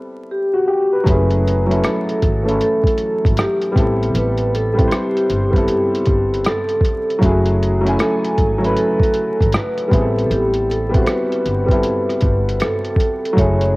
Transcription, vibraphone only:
0.31 1.10 G4 medium
1.08 1.87 B4 medium
1.85 2.61 A4 medium
2.62 3.41 A4 medium
3.40 4.11 G4 medium
4.16 4.51 B4 medium
4.55 4.93 A4 medium
4.93 6.42 G4 medium
6.47 7.25 A4 medium
7.24 7.96 F#4 medium
8.01 8.73 A4 medium
8.78 9.50 A4 medium
9.54 10.28 B4 medium
10.26 10.30 A4 medium
10.32 10.70 G4 medium
10.70 11.00 A4 medium
11.02 11.07 C5 medium
11.08 12.66 B4 medium
12.62 13.40 A4 medium
13.39 13.77 C#5 medium

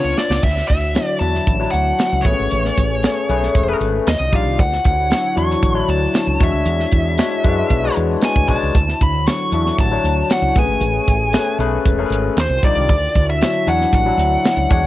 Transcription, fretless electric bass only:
0.04 0.13 C#2 medium
0.30 0.39 C#2 medium
0.44 0.61 D2 medium
0.70 0.96 D2 loud
1.21 1.39 E2 medium
1.47 1.65 A1 loud
1.73 1.91 D2 medium
2.12 2.21 C#2 medium
2.25 2.34 A1 medium
2.39 2.48 G#1 medium
2.52 2.69 A1 loud
2.78 3.04 A1 loud
3.29 3.47 B1 medium
3.55 3.73 E1 medium
3.80 3.98 G#1 medium
4.07 4.16 D#2 medium
4.20 4.29 C2 medium
4.33 4.42 A#1 medium
4.45 4.60 C2 medium
4.60 4.77 D2 loud
4.85 5.12 D2 loud
5.37 5.55 E2 medium
5.63 5.81 A1 medium
5.88 6.06 D2 medium
6.27 6.36 C#2 medium
6.41 6.50 E2 loud
6.53 6.62 D2 medium
6.66 6.84 E2 loud
6.92 7.19 E2 medium
7.44 7.62 F#2 medium
7.70 7.88 B1 loud
7.97 8.15 E2 medium
8.36 8.45 D2 medium
8.49 8.57 B1 medium
8.63 8.71 C#2 medium
8.75 8.92 D2 medium
9.01 9.27 D2 loud
9.52 9.70 E2 medium
9.79 9.96 A1 loud
10.04 10.22 D2 medium
10.42 10.51 C#2 medium
10.56 10.65 A1 medium
10.67 10.77 G#1 medium
10.80 10.99 A1 medium
11.08 11.34 A1 loud
11.59 11.77 B1 medium
11.86 12.03 E1 loud
12.10 12.28 G#1 medium
12.37 12.46 D#2 medium
12.49 12.58 C2 medium
12.63 12.72 A#1 medium
12.76 12.89 C2 medium
12.89 13.07 D2 loud
13.16 13.42 D2 loud
13.67 13.85 E2 medium
13.93 14.10 A1 medium
14.17 14.36 D2 medium
14.57 14.66 C#2 medium
14.71 14.80 E2 loud
14.83 14.87 D2 medium

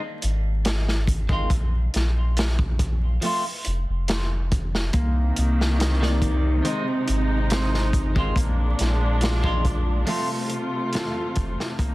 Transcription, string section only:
4.94 8.33 C3 medium
4.94 6.63 D#3 medium
4.94 6.63 A#3 medium
6.65 8.35 G#3 medium
6.65 8.35 D#4 medium
8.37 10.06 A#2 medium
8.37 10.06 G#3 medium
8.37 10.06 D4 medium
10.08 11.78 C3 medium
10.08 11.78 A3 medium
10.08 11.78 F4 medium
11.79 11.95 C3 medium
11.79 11.95 A#3 medium
11.79 11.95 D#4 medium

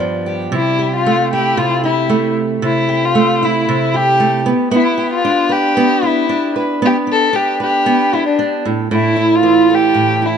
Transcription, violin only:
0.00 0.24 D5 medium
0.56 0.91 E4 loud
0.96 1.31 F4 loud
1.33 1.59 G4 loud
1.58 1.84 F4 loud
1.85 2.33 E4 loud
2.66 3.07 E4 loud
3.05 3.46 F4 loud
3.45 3.97 E4 medium
3.96 4.47 G4 loud
4.72 5.09 E4 loud
5.13 5.53 F4 loud
5.52 6.07 G4 loud
6.06 6.57 E4 loud
6.86 6.97 G4 loud
7.12 7.37 A4 loud
7.36 7.61 G4 loud
7.63 8.16 G4 loud
8.14 8.26 E4 medium
8.26 8.63 D4 medium
8.93 9.37 E4 loud
9.35 9.76 F4 loud
9.75 10.27 G4 loud
10.25 10.38 E4 loud

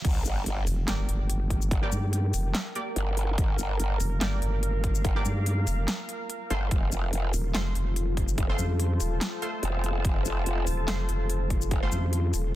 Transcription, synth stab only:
0.88 1.80 A#3 medium
0.88 1.80 G4 medium
0.88 1.80 D5 medium
1.82 2.02 A#3 medium
1.82 2.02 G4 medium
1.82 2.02 D5 loud
2.75 2.95 A#3 medium
2.75 2.95 G4 medium
2.75 2.95 D5 medium
4.21 5.13 A#3 medium
4.21 5.13 G4 medium
4.21 5.13 D5 medium
5.16 5.35 A#3 medium
5.16 5.35 G4 medium
5.16 5.35 D5 loud
6.50 7.52 A3 medium
6.50 7.52 F4 medium
6.50 7.52 C5 loud
7.55 8.47 A3 medium
7.55 8.47 F4 medium
7.55 8.47 C5 medium
8.49 8.69 A3 medium
8.49 8.69 F4 medium
8.49 8.69 C5 loud
9.42 9.62 A3 medium
9.42 9.62 F4 medium
9.42 9.62 C5 medium
10.88 11.80 A3 medium
10.88 11.80 F4 medium
10.88 11.80 C5 medium
11.82 12.02 A3 medium
11.82 12.02 F4 medium
11.82 12.02 C5 loud

